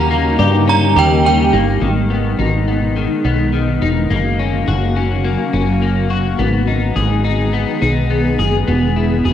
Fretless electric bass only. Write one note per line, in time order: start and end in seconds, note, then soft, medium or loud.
0.00 0.35 D#2 loud
0.39 0.93 G2 medium
0.96 1.50 D#2 loud
1.53 1.80 G1 medium
1.81 2.36 G#1 medium
2.39 3.07 G#1 medium
3.24 3.79 B1 medium
3.82 4.09 E1 medium
4.10 4.64 F#1 medium
4.67 5.35 F#1 medium
5.53 6.35 F#1 medium
6.39 6.93 G#1 medium
6.96 7.64 G#1 medium
7.82 8.36 B1 medium
8.39 8.66 F#1 medium
8.68 9.22 E1 medium
9.25 9.33 E1 medium